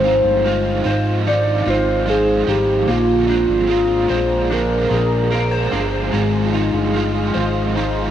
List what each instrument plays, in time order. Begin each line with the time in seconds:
Already playing: analog synth bass G#1, clean electric guitar G#3 G#4, ambient pad D#4 F4 C5 F5, soft synth lead C5
0.03 overdriven electric guitar F3 G#3 C4 F4, clean electric guitar D#4
0.25 analog synth bass G1
0.44 overdriven electric guitar F3 G#3 C4 F4, clean electric guitar F4
0.84 analog synth bass G#1, overdriven electric guitar F3 G#3 C4 F4, clean electric guitar C5
1.26 overdriven electric guitar G#2 D#3 F3 G#3 C4 F4, clean electric guitar D#4, soft synth lead D5
1.65 analog synth bass G#1, overdriven electric guitar F3 G#3 C4 F4, clean electric guitar F4
1.70 soft synth lead C5
2.06 overdriven electric guitar F3 G#3 C4, soft synth lead G#4, clean electric guitar C5
2.10 overdriven electric guitar F4
2.47 analog synth bass G#1, overdriven electric guitar F3 G#3 C4 F4, clean electric guitar D#4, soft synth lead G4
2.87 analog synth bass A#1, overdriven electric guitar A#2 D3 F3 G#3 C4 F4, clean electric guitar A#3, soft synth lead F4, ambient pad G#4 D5 A#5
3.27 overdriven electric guitar G#3 C4 F4, clean electric guitar D4
3.32 overdriven electric guitar F3
3.49 analog synth bass G#1
3.67 overdriven electric guitar F3 G#3 C4, clean electric guitar G#4
3.71 overdriven electric guitar F4
4.08 analog synth bass A#1, overdriven electric guitar G#3 C4 F4, clean electric guitar C5
4.13 overdriven electric guitar F3
4.51 overdriven electric guitar A#2 D3 F3 G#3 C4 F4, clean electric guitar D4, soft synth lead A#4
4.90 analog synth bass A#1, overdriven electric guitar F3 G#3 C4 F4, clean electric guitar G#4
5.31 overdriven electric guitar F3 G#3 C4 F4, clean electric guitar A#4
5.51 clean electric guitar C5
5.71 analog synth bass G1, overdriven electric guitar G#3 C4 F4, clean electric guitar D4
5.75 overdriven electric guitar F3
6.12 analog synth bass G#1, overdriven electric guitar G#2 D#3 F3 G#3 C4 F4, clean electric guitar G#3, ambient pad D#5 F5 C6
6.53 overdriven electric guitar F3 G#3 C4 F4, clean electric guitar D#4
6.74 analog synth bass G1
6.93 overdriven electric guitar F3 G#3 C4, clean electric guitar F4
6.97 overdriven electric guitar F4
7.34 analog synth bass G#1, overdriven electric guitar G#3 C4 F4, clean electric guitar C5
7.38 overdriven electric guitar F3
7.76 overdriven electric guitar G#2 D#3 F3 G#3 C4 F4, clean electric guitar D#4